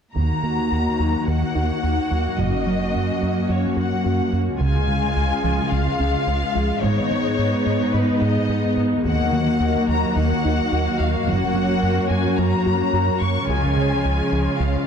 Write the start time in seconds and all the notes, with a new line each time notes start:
0.15 D#2 D#3 A#3 D#4 F#4 F#5 A#5
0.43 D#3 A#3
0.72 D#2
1.00 D#2 F#3
1.27 D#2 D#3 F#5
1.55 D#2 D#4
1.83 D#2 D#4
2.11 D#2 F#3
2.38 F#1 F#2 F#3 C#4 D#5
2.67 F#3 C#4
2.96 F#2
3.21 F#2 A#3
3.49 F#2 F#3 C#5
3.77 F#2 F#4 F#5
4.05 F#2 F#4
4.33 F#2 A#3
4.60 C#2 C#3 G#3 F4 G#4 F5 G#5
4.88 C#3 G#3
5.16 C#2
5.44 C#2 F3
5.71 C#2 C#3 F5
6.00 C#2 C#4
6.27 C#2 C#4
6.55 C#2 F3
6.81 G#1 G#2 G#3 B3 D#4 C#5 D#5
7.11 G#3 D#4
7.39 G#2
7.66 G#2 B3
7.94 G#2 G#3 B4
8.22 G#2 G#4 D#5
8.49 G#2 G#4
8.77 G#2 B3
9.05 D#2 D#3 F#3 A#3 F#4 A#4 F#5
9.32 D#3 A#3
9.60 D#2
9.88 D#2 F#3 A#5
10.16 D#2 D#3 F#5
10.45 D#2 D#4
10.72 D#2 D#4
11.00 D#2 F#3 F5
11.27 F#1 F#2 F#3 C#4 C#5 F#5
11.55 F#3 C#4
11.83 F#2
12.10 F#2 A#3 G#5
12.38 F#2 F#3 A#5
12.66 F#2 F#4
12.93 F#2 F#4
13.21 F#2 A#3 C#6
13.48 C#2 C#3 F3 G#3 F4 G#4 G#5
13.77 C#3 G#3
14.05 C#2
14.32 C#2 F3
14.60 C#2 C#3 F5